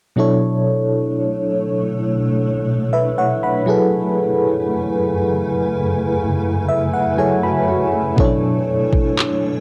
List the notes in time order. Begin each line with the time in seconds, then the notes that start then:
0.16 B2 F#3 A3 D4 E4 A4 C#5
2.93 B4 E5
3.18 C#5 F#5
3.43 F#5 B5
3.66 F#2 C#3 F#3 A3 E4 G#4 A4 B4 G#5
6.68 E5
6.93 F#5
7.17 F#3 E4 G#4 A4 C#5 G#5
7.43 F#4 A4 B5
7.68 F#4
7.93 C#4 E4
8.16 B2 F#3 C#4 D4 E4 A4 C#5, kick
8.24 D4
8.93 kick
9.19 clap